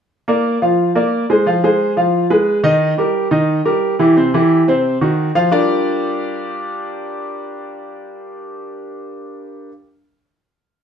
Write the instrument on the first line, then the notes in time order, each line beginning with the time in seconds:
upright piano
0.28 A#3 A#4 D5
0.62 F3 F4 F5
0.95 A#3 A#4 D5
1.30 G#3 G#4 C5
1.46 F3 F4 F5
1.64 G#3 G#4 C5
1.97 F3 F4 F5
2.30 G#3 G#4 B4
2.64 D#3 D#4 D#5
2.98 G3 G4 A#4
3.31 D#3 D#4 D#5
3.65 G3 G4 A#4
3.99 E3 E4 G4
4.17 C3 C4 C5
4.34 E3 E4 G4
4.68 C3 C4 C5
5.01 D#3 D#4 F#4
5.35 F3 F4 F5
5.51 G3 D4 F4 G4 A#4 D5